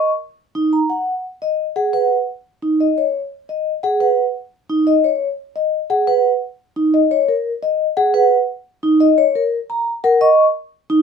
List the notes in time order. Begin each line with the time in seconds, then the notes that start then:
0.55 D#4
0.73 A#5
0.90 F#5
1.42 D#5
1.76 G#4 F#5
1.93 B4 F#5
2.62 D#4
2.80 D#5
2.98 C#5
3.49 D#5
3.83 G#4 F#5
4.01 B4 F#5
4.69 D#4
4.87 D#5
5.04 C#5
5.56 D#5
5.90 G#4 F#5
6.07 B4 F#5
6.76 D#4
6.94 D#5
7.11 C#5
7.28 A#4
7.63 D#5
7.97 G#4 F#5
8.14 B4 F#5
8.83 D#4
9.00 D#5
9.18 C#5
9.35 A#4
9.70 A#5
10.04 A#4 F#5
10.21 D#5 C#6
10.90 D#4